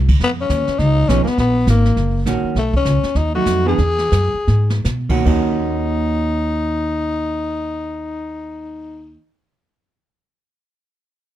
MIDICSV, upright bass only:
0, 0, Header, 1, 3, 480
1, 0, Start_track
1, 0, Key_signature, -6, "minor"
1, 0, Tempo, 295130
1, 330, Time_signature, 4, 2, 24, 8
1, 5132, Tempo, 315457
1, 6092, Tempo, 344432
1, 7052, Tempo, 390879
1, 8012, Tempo, 422535
1, 14938, End_track
2, 0, Start_track
2, 0, Title_t, "Upright bass"
2, 0, Program_c, 0, 32
2, 143, Note_on_c, 0, 38, 64
2, 316, Note_off_c, 0, 38, 0
2, 326, Note_on_c, 0, 41, 71
2, 792, Note_off_c, 0, 41, 0
2, 804, Note_on_c, 0, 39, 76
2, 1079, Note_off_c, 0, 39, 0
2, 1286, Note_on_c, 0, 37, 75
2, 1751, Note_off_c, 0, 37, 0
2, 1769, Note_on_c, 0, 35, 76
2, 2041, Note_off_c, 0, 35, 0
2, 2244, Note_on_c, 0, 34, 79
2, 2705, Note_off_c, 0, 34, 0
2, 2714, Note_on_c, 0, 32, 85
2, 3184, Note_off_c, 0, 32, 0
2, 3196, Note_on_c, 0, 30, 75
2, 3658, Note_off_c, 0, 30, 0
2, 3668, Note_on_c, 0, 34, 71
2, 3948, Note_off_c, 0, 34, 0
2, 4148, Note_on_c, 0, 35, 72
2, 4622, Note_off_c, 0, 35, 0
2, 4633, Note_on_c, 0, 37, 81
2, 4916, Note_off_c, 0, 37, 0
2, 5126, Note_on_c, 0, 39, 73
2, 5586, Note_off_c, 0, 39, 0
2, 5597, Note_on_c, 0, 41, 71
2, 6074, Note_off_c, 0, 41, 0
2, 6089, Note_on_c, 0, 40, 78
2, 6544, Note_off_c, 0, 40, 0
2, 6556, Note_on_c, 0, 42, 72
2, 6836, Note_off_c, 0, 42, 0
2, 7053, Note_on_c, 0, 44, 74
2, 7501, Note_off_c, 0, 44, 0
2, 7516, Note_on_c, 0, 47, 76
2, 7999, Note_off_c, 0, 47, 0
2, 8012, Note_on_c, 0, 39, 77
2, 12430, Note_off_c, 0, 39, 0
2, 14938, End_track
3, 0, Start_track
3, 0, Title_t, "Muted upright bass strokes"
3, 1111, Note_on_c, 9, 29, 37
3, 1273, Note_off_c, 9, 29, 0
3, 2058, Note_on_c, 9, 29, 38
3, 2220, Note_off_c, 9, 29, 0
3, 3961, Note_on_c, 9, 29, 37
3, 4124, Note_off_c, 9, 29, 0
3, 4933, Note_on_c, 9, 29, 39
3, 5096, Note_off_c, 9, 29, 0
3, 6865, Note_on_c, 9, 29, 32
3, 7004, Note_off_c, 9, 29, 0
3, 14938, End_track
0, 0, End_of_file